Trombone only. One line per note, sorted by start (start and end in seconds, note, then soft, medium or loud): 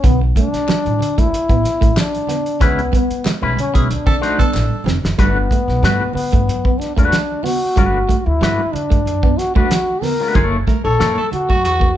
0.06 0.20 B3 medium
0.38 1.21 D4 loud
1.19 2.01 E4 loud
1.99 2.65 D4 medium
2.63 2.95 B3 medium
2.95 3.30 B3 medium
3.60 3.74 C#4 medium
3.91 4.83 D4 medium
5.19 6.12 B3 loud
6.15 6.81 B3 medium
6.80 6.96 D4 medium
6.97 7.45 D4 medium
7.44 8.19 F#4 loud
8.19 8.28 F#4 medium
8.26 8.75 E4 loud
8.74 9.40 D4 medium
9.38 9.55 F#4 loud
9.55 10.04 F#4 medium
10.03 10.57 A#4 loud
10.85 11.29 A4 loud
11.33 11.97 F#4 medium